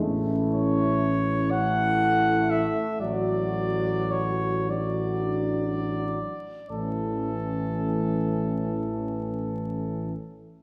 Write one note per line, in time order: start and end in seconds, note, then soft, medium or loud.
0.01 2.65 A1 medium
0.01 1.20 A3 soft
0.01 1.49 C#4 medium
0.01 2.85 E4 medium
0.51 1.52 C#5 medium
1.51 3.03 A3 soft
1.51 2.87 E4 soft
1.51 2.51 F#5 medium
2.50 3.00 E5 medium
3.00 6.19 A1 soft
3.00 4.68 F#3 soft
3.00 4.66 F#4 medium
3.00 4.67 F#4 soft
3.00 4.12 D5 medium
4.11 4.71 C#5 medium
4.69 6.20 F#3 soft
4.69 6.23 D4 soft
4.69 5.65 F#4 soft
4.69 6.70 D5 medium
6.70 10.11 A1 soft
6.70 10.13 E3 soft
6.70 10.11 A3 soft
6.70 10.12 C#4 soft
6.70 10.12 A4 soft